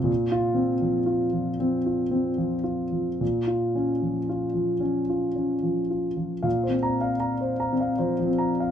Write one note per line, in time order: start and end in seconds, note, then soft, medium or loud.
0.00 1.55 A#2 medium
0.00 0.11 C3 medium
0.00 0.11 C4 medium
0.00 0.12 F4 soft
0.32 0.73 F4 medium
0.54 0.97 C4 soft
0.81 1.24 F3 soft
1.06 1.49 F4 soft
1.33 1.76 F3 soft
1.60 2.03 C4 soft
1.86 2.29 F4 soft
2.11 2.55 C4 soft
2.38 2.82 F3 soft
2.64 3.08 F4 soft
2.92 3.20 F3 soft
3.21 4.80 A#2 soft
3.47 3.91 F4 soft
3.75 4.19 C#4 soft
4.02 4.46 F3 soft
4.29 4.73 F4 soft
4.54 4.99 F3 soft
4.80 5.25 C#4 soft
5.09 5.53 F4 soft
5.36 5.80 C#4 soft
5.63 6.07 F3 soft
5.90 6.34 F4 soft
6.17 6.44 F3 soft
6.43 7.94 A#2 medium
6.43 6.75 F5 soft
6.64 6.95 C5 soft
6.69 7.11 C4 soft
6.83 7.14 A#5 medium
7.01 7.33 F5 soft
7.20 7.52 A#5 soft
7.41 7.72 C5 soft
7.60 7.91 A#5 soft
7.73 8.14 C4 soft
7.80 8.11 F5 soft
7.98 8.18 F3 soft
7.98 8.30 C5 soft
8.20 8.50 F3 soft
8.26 8.67 C4 soft
8.38 8.69 A#5 soft
8.60 8.71 F5 soft